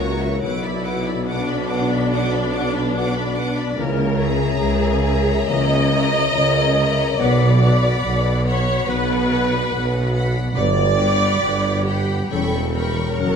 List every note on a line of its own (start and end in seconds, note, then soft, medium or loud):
0.00 0.42 C#2 medium
0.00 0.43 C#2 medium
0.00 0.43 C#3 medium
0.00 0.46 C#3 medium
0.00 0.42 E3 medium
0.00 0.42 A#3 medium
0.00 0.45 A#3 soft
0.00 0.46 E4 medium
0.00 0.43 F#4 medium
0.00 0.46 A#4 medium
0.00 0.19 C#5 medium
0.00 0.21 C#5 medium
0.00 0.46 E5 medium
0.00 0.20 A#5 medium
0.00 0.21 C#6 medium
0.20 0.45 C#5 medium
0.20 0.42 E5 medium
0.20 0.43 A#5 medium
0.20 0.42 C#6 soft
0.40 3.60 B1 medium
0.40 3.78 B1 medium
0.40 3.81 B2 medium
0.40 3.78 B2 medium
0.40 3.74 F#3 medium
0.40 3.74 B3 medium
0.40 1.28 E4 medium
0.40 0.62 B4 medium
0.40 0.61 F#5 medium
0.40 0.63 D6 medium
0.62 2.32 B3 medium
0.62 0.85 D5 medium
0.62 0.86 B5 medium
0.85 2.53 F#4 medium
0.85 1.07 B4 medium
0.85 1.07 F#5 medium
0.85 1.07 D6 medium
1.06 1.90 D5 medium
1.06 1.28 D5 medium
1.06 1.28 B5 medium
1.27 3.73 D4 loud
1.27 1.47 B4 medium
1.27 1.69 B4 medium
1.27 1.47 F#5 medium
1.27 1.48 D6 medium
1.48 1.70 D5 medium
1.48 3.15 F#5 medium
1.48 1.70 B5 medium
1.69 1.91 B4 medium
1.69 2.94 B4 medium
1.69 1.91 F#5 medium
1.69 1.91 D6 medium
1.91 2.74 D5 medium
1.91 2.13 D5 medium
1.91 2.12 B5 medium
2.12 3.81 F#3 medium
2.12 2.32 B4 medium
2.12 2.32 F#5 medium
2.12 2.32 D6 medium
2.33 3.81 B3 medium
2.33 2.54 D5 medium
2.33 2.54 B5 medium
2.53 3.81 F#4 medium
2.53 2.76 B4 medium
2.53 2.76 F#5 medium
2.53 2.75 D6 medium
2.75 3.57 D5 medium
2.75 2.97 D5 medium
2.75 2.96 B5 medium
2.95 3.36 B4 medium
2.95 3.15 B4 medium
2.95 3.15 F#5 medium
2.95 3.15 D6 medium
3.15 3.37 D5 medium
3.15 3.81 F#5 medium
3.15 3.36 B5 medium
3.36 3.57 B4 medium
3.36 3.81 B4 medium
3.36 3.57 F#5 medium
3.36 3.57 D6 medium
3.57 3.78 D5 medium
3.57 3.81 D5 medium
3.57 3.78 B5 medium
3.76 4.50 C#2 medium
3.76 4.50 C#2 loud
3.76 5.48 C#3 medium
3.76 4.50 C#3 medium
3.76 4.07 E3 medium
3.76 4.07 A#3 medium
3.76 4.18 A#4 loud
3.98 5.71 A#3 medium
4.18 5.93 E4 medium
4.18 5.50 G#4 loud
4.18 5.02 E5 medium
4.18 5.02 A#5 medium
4.39 5.26 C#5 medium
4.59 5.39 C#2 medium
4.59 5.39 C#3 medium
4.59 5.02 A#4 medium
4.81 6.55 E5 medium
5.03 6.35 A#4 medium
5.03 5.92 E5 medium
5.03 5.91 A#5 medium
5.03 5.92 A#5 medium
5.27 6.13 C#5 medium
5.48 6.25 C#2 medium
5.48 7.24 C#3 medium
5.48 6.26 C#3 medium
5.48 5.83 E3 medium
5.48 5.83 A#3 medium
5.48 7.20 D#5 loud
5.72 7.24 A#3 medium
5.92 7.24 E4 medium
5.92 6.76 E5 medium
5.92 6.75 A#5 medium
5.92 6.77 A#5 medium
6.15 6.97 C#5 medium
6.34 7.10 C#2 medium
6.34 7.10 C#3 medium
6.34 6.77 A#4 medium
6.56 7.24 E5 medium
6.77 7.24 A#4 medium
6.77 7.20 E5 medium
6.77 7.19 A#5 medium
6.77 7.20 A#5 medium
6.98 7.23 C#5 medium
7.19 7.95 B1 medium
7.19 7.95 B1 loud
7.19 10.59 B2 medium
7.19 7.95 B2 medium
7.19 7.51 F#3 medium
7.19 7.51 B3 medium
7.19 8.47 D5 loud
7.19 7.61 F#5 medium
7.19 7.62 B5 medium
7.40 9.08 B3 medium
7.62 9.29 F#4 medium
7.62 8.45 F#5 medium
7.62 8.46 B5 medium
7.83 8.66 D5 medium
8.04 8.79 B1 medium
8.04 8.79 B2 medium
8.04 8.45 B4 medium
8.26 9.93 F#5 medium
8.46 9.72 B4 medium
8.46 8.88 C#5 loud
8.46 9.29 F#5 medium
8.46 9.29 B5 medium
8.67 9.51 D5 medium
8.87 9.62 B1 medium
8.87 9.63 B1 medium
8.87 9.63 B2 medium
8.87 12.34 F#3 medium
8.87 9.19 F#3 medium
8.87 9.19 B3 medium
8.87 10.16 B4 loud
9.09 10.76 B3 medium
9.30 10.97 F#4 medium
9.30 10.13 F#5 medium
9.30 10.13 B5 medium
9.52 10.35 D5 medium
9.72 10.39 B1 medium
9.72 10.46 B1 medium
9.72 10.47 B2 medium
9.72 10.14 B4 medium
9.94 11.64 F#5 medium
10.15 11.41 B4 medium
10.15 10.56 F#5 medium
10.15 10.56 B5 medium
10.36 11.18 D5 medium
10.56 11.31 G1 medium
10.56 11.32 G1 medium
10.56 11.32 G2 medium
10.56 12.35 G2 medium
10.56 10.88 F#3 medium
10.56 10.88 B3 medium
10.56 11.83 D5 loud
10.77 12.52 B3 medium
10.97 12.35 F#4 medium
10.97 11.85 F#5 medium
10.97 11.85 G5 medium
10.97 11.86 B5 medium
11.19 12.08 D5 medium
11.42 12.21 G1 medium
11.42 12.21 G2 medium
11.42 11.86 B4 medium
11.65 12.35 F#5 medium
11.86 12.32 G4 medium
11.86 13.24 B4 medium
11.86 12.30 F#5 medium
11.86 12.30 G5 medium
11.86 12.31 B5 medium
12.09 12.35 D5 medium
12.30 13.10 E1 medium
12.30 13.24 E2 medium
12.30 13.11 E2 medium
12.30 12.65 G3 medium
12.30 12.65 C#4 medium
12.30 12.76 A4 medium
12.30 12.73 G5 medium
12.30 12.73 B5 medium
12.30 12.75 C#6 medium
12.53 13.24 B3 medium
12.75 13.24 G4 medium
12.75 13.36 A#4 medium
12.75 13.19 G5 medium
12.75 13.19 B5 medium
12.75 13.21 C#6 medium
12.98 13.36 C#5 medium
13.19 13.36 F#1 medium
13.19 13.36 F#2 medium
13.19 13.36 F#3 medium
13.19 13.36 C#4 medium
13.19 13.36 F#5 medium
13.19 13.36 C#6 medium